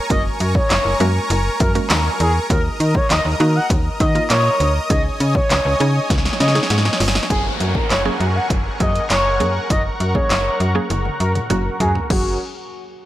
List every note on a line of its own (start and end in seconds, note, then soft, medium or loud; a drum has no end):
0.00 4.86 A#4 medium
0.00 2.46 G#5 medium
0.00 4.86 A#5 medium
0.00 2.46 C#6 medium
0.10 0.30 F#1 loud
0.10 0.80 G#3 medium
0.10 0.80 A#3 medium
0.10 0.80 C#4 medium
0.10 0.80 F#4 medium
0.10 0.80 A#4 medium
0.10 0.22 D#5 loud
0.10 kick loud
0.10 closed hi-hat loud
0.40 0.60 F#2 loud
0.40 closed hi-hat medium
0.55 0.98 C#5 medium
0.55 kick medium
0.70 0.80 F#1 loud
0.70 snare loud
0.70 clap loud
0.70 closed hi-hat loud
0.85 0.95 F#1 medium
1.00 1.20 F#2 loud
1.00 1.58 G#3 medium
1.00 1.58 A#3 medium
1.00 1.58 C#4 medium
1.00 1.59 F#4 medium
1.00 1.59 A#4 medium
1.00 closed hi-hat medium
1.30 1.50 F#1 loud
1.30 closed hi-hat loud
1.60 1.80 F#2 loud
1.60 1.72 A#4 medium
1.60 kick loud
1.60 closed hi-hat medium
1.75 2.33 G#3 medium
1.75 2.33 A#3 medium
1.75 2.33 C#4 medium
1.75 2.33 F#4 medium
1.75 2.33 A#4 medium
1.75 closed hi-hat medium
1.90 2.10 D#2 loud
1.90 snare loud
1.90 clap loud
1.90 closed hi-hat loud
2.20 2.40 E2 medium
2.20 2.32 G#4 medium
2.20 closed hi-hat medium
2.50 2.70 D#2 loud
2.50 3.20 A#3 medium
2.50 3.20 D#4 medium
2.50 3.20 F#4 medium
2.50 2.62 A#4 loud
2.50 7.26 D#5 medium
2.50 7.26 D#6 medium
2.50 kick loud
2.50 closed hi-hat loud
2.80 3.00 D#3 loud
2.80 closed hi-hat medium
2.95 3.07 C#5 medium
2.95 kick medium
3.10 3.20 D#2 loud
3.10 3.22 D#5 medium
3.10 snare loud
3.10 clap loud
3.10 closed hi-hat loud
3.25 3.35 D#2 loud
3.40 3.60 D#3 loud
3.40 3.98 A#3 medium
3.40 3.98 D#4 medium
3.40 3.99 F#4 medium
3.40 closed hi-hat medium
3.55 3.67 F#5 medium
3.70 3.90 D#2 loud
3.70 kick loud
3.70 closed hi-hat loud
4.00 4.20 D#3 loud
4.00 4.24 D#5 medium
4.00 kick loud
4.00 closed hi-hat medium
4.15 4.73 A#3 medium
4.15 4.73 D#4 medium
4.15 4.73 F4 medium
4.15 closed hi-hat medium
4.30 4.50 A#2 medium
4.30 4.73 C#5 loud
4.30 snare loud
4.30 clap loud
4.30 closed hi-hat loud
4.60 4.80 D2 medium
4.60 closed hi-hat medium
4.90 5.10 C#2 loud
4.90 5.60 C#4 medium
4.90 5.60 D#4 medium
4.90 5.60 G#4 loud
4.90 7.28 C#5 medium
4.90 5.02 D#5 loud
4.90 7.28 G#5 medium
4.90 kick loud
4.90 closed hi-hat loud
5.20 5.40 C#3 loud
5.20 closed hi-hat medium
5.35 5.78 C#5 medium
5.35 kick medium
5.50 5.60 C#2 loud
5.50 snare loud
5.50 clap loud
5.50 closed hi-hat loud
5.65 5.75 C#2 loud
5.80 6.00 C#3 loud
5.80 6.38 C#4 medium
5.80 6.38 D#4 medium
5.80 6.39 G#4 medium
5.80 closed hi-hat medium
6.10 6.30 C#2 loud
6.10 kick loud
6.10 snare medium
6.10 closed hi-hat loud
6.18 snare medium
6.25 snare medium
6.25 closed hi-hat medium
6.33 snare medium
6.40 6.60 C#3 loud
6.40 6.52 D#5 medium
6.40 snare medium
6.40 closed hi-hat medium
6.48 snare medium
6.55 7.13 C#4 medium
6.55 7.13 D#4 medium
6.55 7.14 G#4 medium
6.55 snare medium
6.55 closed hi-hat medium
6.63 snare medium
6.70 6.90 G#2 medium
6.70 snare medium
6.70 closed hi-hat loud
6.78 snare medium
6.85 snare loud
6.93 snare medium
7.00 7.20 G1 loud
7.00 snare loud
7.00 open hi-hat medium
7.08 snare loud
7.15 snare loud
7.23 snare loud
7.30 7.50 F#1 loud
7.30 7.88 F#3 medium
7.30 7.88 A#3 medium
7.30 7.88 C#4 medium
7.30 7.42 G#4 loud
7.30 7.89 G#4 medium
7.30 12.06 A#4 medium
7.30 kick loud
7.30 closed hi-hat loud
7.30 downlifter medium
7.60 7.80 F#2 loud
7.60 closed hi-hat medium
7.75 7.87 A#4 medium
7.75 kick medium
7.90 8.10 F#1 loud
7.90 8.02 C#5 medium
7.90 snare medium
7.90 clap loud
7.90 closed hi-hat medium
8.05 8.63 F#3 medium
8.05 8.63 A#3 medium
8.05 8.63 C#4 medium
8.05 8.64 G#4 medium
8.20 8.40 F#2 loud
8.20 closed hi-hat medium
8.35 8.47 F#5 medium
8.50 8.70 F#1 loud
8.50 kick loud
8.50 closed hi-hat loud
8.80 9.00 F#2 loud
8.80 9.27 F#3 medium
8.80 9.27 A#3 medium
8.80 9.27 C#4 medium
8.80 9.27 G#4 medium
8.80 9.04 D#5 medium
8.80 kick loud
8.80 closed hi-hat medium
8.95 closed hi-hat medium
9.10 9.42 F#1 loud
9.10 9.53 C#5 medium
9.10 snare medium
9.10 clap loud
9.10 closed hi-hat loud
9.40 9.60 F#2 loud
9.40 9.98 F#3 medium
9.40 9.98 A#3 medium
9.40 9.98 C#4 medium
9.40 9.98 G#4 medium
9.40 closed hi-hat medium
9.70 9.90 F#1 loud
9.70 9.82 D#5 loud
9.70 12.08 A#5 medium
9.70 kick loud
9.70 closed hi-hat loud
10.00 10.20 F#2 loud
10.00 closed hi-hat medium
10.15 10.62 F#3 medium
10.15 10.62 A#3 medium
10.15 10.62 C#4 medium
10.15 10.62 G#4 medium
10.15 10.58 C#5 medium
10.15 kick medium
10.30 10.50 F#1 loud
10.30 snare loud
10.30 clap loud
10.30 closed hi-hat medium
10.60 10.80 F#2 medium
10.60 closed hi-hat medium
10.75 11.33 F#3 loud
10.75 11.33 A#3 medium
10.75 11.33 C#4 loud
10.75 11.33 G#4 loud
10.90 11.10 F#1 loud
10.90 closed hi-hat loud
10.90 high tom medium
11.05 high tom medium
11.20 11.40 F#2 loud
11.20 11.32 A#4 medium
11.20 closed hi-hat medium
11.35 closed hi-hat medium
11.35 mid tom medium
11.50 11.70 F#1 loud
11.50 11.97 F#3 medium
11.50 11.97 A#3 medium
11.50 11.97 C#4 medium
11.50 11.97 F#4 loud
11.50 closed hi-hat loud
11.50 mid tom medium
11.80 12.00 F#2 loud
11.80 11.92 G#4 medium
11.80 closed hi-hat medium
11.80 floor tom loud
11.95 floor tom medium
12.10 12.38 F#1 loud
12.10 12.38 F#3 medium
12.10 12.38 A#3 medium
12.10 12.38 C#4 medium
12.10 12.38 F#4 medium
12.10 12.38 G#4 loud
12.10 12.38 G#4 medium
12.10 12.38 A#4 medium
12.10 12.38 F#5 medium
12.10 kick loud
12.10 crash medium